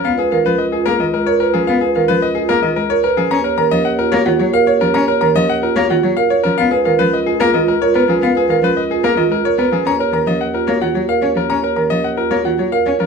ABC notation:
X:1
M:3/4
L:1/16
Q:1/4=110
K:C#mix
V:1 name="Grand piano"
e G e B d G A d A c A G | e G e B d G A d A c A G | a A a d f A c f c e c A | a A a d f A c f c e c A |
e G e B d G A d A c A G | e G e B d G A d A c A G | a A a d f A c f c e c A | a A a d f A c f c e c A |]
V:2 name="Marimba"
z B A C z E G z2 A B C | z B A C z E G z2 A B C | z c A C z E F E z A c C | z c A C z E F E z A c C |
z B A C z E G E z A B C | z B A C z E G E z A B C | z c A C z E F E z A c C | z c A C z E F E z A c C |]
V:3 name="Cello" clef=bass
B, z D, E, z2 A, D, G, z2 E, | B, z D, E, z2 A, D, G, z2 E, | C z D, E, z2 A, D, F, z2 E, | C z D, E, z2 A, D, F, z2 E, |
B, z D, E, z2 A, D, G, z B, E, | B, z D, E, z2 A, D, G, z B, E, | C z D, E, z2 A, D, F, z C E, | C z D, E, z2 A, D, F, z C E, |]
V:4 name="Bass clarinet" clef=bass
C,,12- | C,,12 | D,,12- | D,,12 |
C,,12- | C,,12 | D,,12- | D,,12 |]